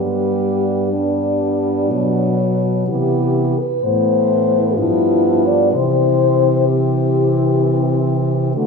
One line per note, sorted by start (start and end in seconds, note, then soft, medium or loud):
0.00 1.92 G2 soft
0.00 0.90 G3 soft
0.00 0.89 B3 soft
0.00 0.90 G4 soft
0.90 1.92 G3 soft
0.90 2.84 B3 soft
0.90 2.35 D4 soft
1.90 2.88 B2 soft
1.90 2.87 F#3 soft
2.87 3.56 C3 soft
2.87 3.55 E3 soft
2.87 3.55 B3 soft
2.87 3.60 G4 soft
3.59 3.85 B4 soft
3.83 4.79 A2 soft
3.83 4.79 E3 soft
3.83 4.73 B3 soft
3.83 4.78 C5 soft
4.76 5.74 G2 soft
4.76 5.72 F3 soft
4.76 5.75 B3 soft
4.76 5.49 E4 medium
5.48 5.72 D5 soft
5.72 8.55 C3 soft
5.72 6.66 E3 soft
5.72 6.68 C4 soft
5.72 6.68 C5 medium
6.67 8.52 E3 soft
6.67 8.52 C4 soft
6.67 8.08 G4 soft
8.56 8.67 D3 soft
8.56 8.67 A3 soft
8.56 8.67 B3 soft
8.56 8.67 F#4 medium